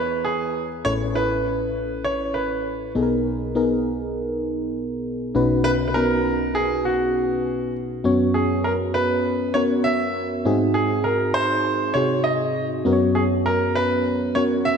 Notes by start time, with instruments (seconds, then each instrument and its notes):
Already playing: fm electric piano E2 E3 B3 E4 G#4 B4 A#5, grand piano B4
0.25 grand piano G#4
0.85 fm electric piano A1 A2 C#4 E4 A4 B4, grand piano C#5
1.14 fm electric piano C#4 E4 A4 B4, grand piano B4
2.04 grand piano C#5
2.34 grand piano B4
2.95 fm electric piano B1 B2 B3 D#4 G#4 A4
3.03 fm electric piano A#4
3.55 fm electric piano B3 D#4 G#4 A#4
5.35 fm electric piano B1 B2 C#4 D#4 F#4 B4
5.64 grand piano B4
5.88 grand piano B4
5.94 fm electric piano B3 C#4 D#4 F#4, grand piano A#4
6.55 grand piano G#4
6.85 grand piano F#4
8.04 fm electric piano F#2 B3 C#4 F#4 C#5
8.34 grand piano G#4
8.64 grand piano A#4
8.94 grand piano B4
9.54 fm electric piano B3 C#4 F#4 A#4, grand piano C#5
9.84 grand piano E5
10.45 fm electric piano G#2 C4 D#4 F#4 G#4
10.74 grand piano G#4
11.04 grand piano A#4
11.34 grand piano C5
11.94 fm electric piano C3 D#4 F#4 G#4, grand piano C#5
12.24 grand piano D#5
12.85 fm electric piano F#2 B3 C#4 F#4 A#4
12.93 fm electric piano C#5
13.15 grand piano G#4
13.46 grand piano A#4
13.75 grand piano B4
14.35 fm electric piano B3 C#4 F#4 A#4, grand piano C#5
14.65 grand piano E5